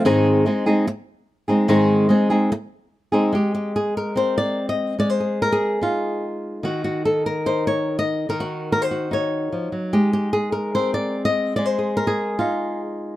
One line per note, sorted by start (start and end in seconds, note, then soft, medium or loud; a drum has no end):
0.05 0.45 G#2 medium
0.05 0.46 D#3 medium
0.05 0.45 G#3 medium
0.05 0.45 C4 loud
0.05 0.46 D#4 medium
0.05 0.46 G#4 medium
0.46 0.66 G#3 medium
0.46 0.66 C4 medium
0.46 0.65 D#4 medium
0.46 0.65 G#4 medium
0.66 0.86 G#3 soft
0.66 0.87 C4 medium
0.66 0.86 D#4 medium
0.66 0.86 G#4 medium
0.87 muted nylon-string guitar stroke medium
1.48 1.67 G#3 medium
1.48 1.68 C4 soft
1.48 1.69 D#4 medium
1.48 1.68 G#4 medium
1.68 2.09 G#2 medium
1.68 2.09 D#3 medium
1.68 2.08 G#3 medium
1.68 2.09 C4 medium
1.68 2.09 D#4 medium
1.68 2.09 G#4 medium
2.09 2.29 G#3 medium
2.09 2.30 C4 medium
2.09 2.29 D#4 medium
2.09 2.29 G#4 medium
2.30 2.51 G#3 soft
2.30 2.51 C4 medium
2.30 2.50 D#4 medium
2.30 2.50 G#4 medium
2.52 muted nylon-string guitar stroke medium
3.12 3.31 G#3 soft
3.12 3.33 C4 medium
3.12 3.33 D#4 medium
3.12 3.32 G#4 medium
3.33 4.96 G#3 medium
3.33 3.53 G4 medium
3.55 3.75 G4 medium
3.76 3.96 G#4 medium
3.97 4.58 A#4 medium
4.16 4.96 C4 soft
4.16 4.37 C5 medium
4.38 4.68 D5 medium
4.69 4.99 D#5 medium
4.99 6.61 G#3 medium
4.99 5.10 D5 loud
5.10 5.40 C5 medium
5.20 5.51 G#4 soft
5.42 5.82 A#4 medium
5.52 6.23 G#4 medium
5.81 7.08 D#4 medium
5.81 6.64 F4 medium
6.63 8.28 D#3 medium
6.63 6.83 F#4 medium
6.84 7.05 F#4 medium
7.05 7.26 A4 medium
7.26 7.88 A#4 medium
7.46 9.11 D#4 medium
7.46 7.67 C5 medium
7.67 7.98 C#5 medium
7.99 8.29 D#5 loud
8.29 9.52 D#3 medium
8.29 8.70 A#4 medium
8.40 8.90 F#4 medium
8.72 8.82 A#4 medium
8.82 9.12 C5 medium
8.91 9.91 F#4 soft
9.11 10.97 D#4 medium
9.11 9.94 C#5 medium
9.52 9.72 F3 soft
9.72 9.93 F#3 medium
9.93 11.55 G#3 medium
9.93 10.12 G4 medium
10.13 10.32 G4 medium
10.33 10.52 G#4 medium
10.52 11.15 A#4 medium
10.75 11.55 C4 medium
10.75 10.94 C5 medium
10.94 11.25 D5 medium
11.25 11.56 D#5 loud
11.56 13.16 G#3 medium
11.56 11.65 D5 medium
11.65 11.96 C5 loud
11.79 12.06 G#4 soft
11.97 12.38 A#4 medium
12.07 12.80 G#4 medium
12.39 13.16 D#4 medium
12.39 13.16 F4 medium